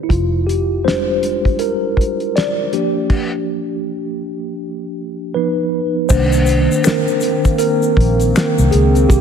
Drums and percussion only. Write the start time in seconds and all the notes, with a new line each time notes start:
0.10 kick, closed hi-hat
0.49 closed hi-hat
0.88 snare, closed hi-hat
1.23 closed hi-hat
1.45 kick, closed hi-hat
1.59 closed hi-hat
1.97 kick, closed hi-hat
2.20 closed hi-hat
2.37 snare, closed hi-hat
2.73 closed hi-hat
3.10 kick, crash
6.10 kick, crash, shaker
6.32 shaker
6.46 closed hi-hat, shaker
6.72 shaker
6.84 finger snap, snare, closed hi-hat, shaker
7.08 shaker
7.21 closed hi-hat, shaker
7.45 kick, closed hi-hat, shaker
7.58 closed hi-hat, shaker
7.82 shaker
7.97 kick, closed hi-hat
8.20 closed hi-hat, shaker
8.36 finger snap, snare, closed hi-hat, shaker
8.59 shaker
8.72 closed hi-hat
8.95 closed hi-hat, shaker
9.10 kick, closed hi-hat, shaker